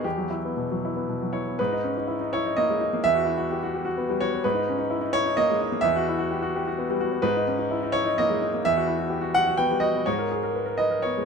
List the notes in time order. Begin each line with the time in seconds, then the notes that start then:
0.04 E2 G4
0.18 F#3
0.30 E4
0.45 B3
0.57 B2
0.71 F#3
0.85 E4
0.96 B3
1.09 B2
1.22 F#3
1.33 E4 C#5
1.48 B3
1.59 G#2 B4
1.72 D#4
1.84 C#4
1.97 D#4
2.07 E4
2.21 D#4
2.33 E4 C#5
2.46 D#4
2.57 A#3 D#5
2.70 G#3
2.81 D#4
2.93 A#3
3.04 E2 E5
3.14 F#4
3.25 E4
3.37 F#4
3.51 G4
3.63 F#4
3.75 G4
3.85 F#4
3.98 B3
4.09 G3
4.20 F#4 C#5
4.34 B3
4.44 G#2 B4
4.55 D#4
4.69 C#4
4.78 D#4
4.90 E4
5.01 D#4
5.13 E4 C#5
5.26 D#4
5.37 A#3 D#5
5.50 G#3
5.61 D#4
5.72 A#3
5.81 E2 E5
5.96 F#4
6.08 E4
6.18 F#4
6.31 G4
6.42 F#4
6.56 G4
6.67 F#4
6.78 B3
6.90 G3
7.00 F#4
7.12 B3
7.22 G#2 B4
7.37 D#4
7.47 C#4
7.58 D#4
7.71 E4
7.83 D#4
7.92 E4 C#5
8.06 D#4
8.18 A#3 D#5
8.30 G#3
8.42 D#4
8.54 A#3
8.65 E2 E5
8.77 F#4
8.87 E4
8.99 F#4
9.10 G4
9.21 F#4
9.34 G4 F#5
9.47 F#4
9.57 B3 G5
9.71 G3
9.80 F#4 D#5
9.95 B3
10.06 G#2 C#5
10.19 A#4
10.32 G#4
10.43 A#4
10.55 B4
10.66 A#4
10.78 B4 D#5
10.91 A#4
11.02 B3 C#5
11.18 G#3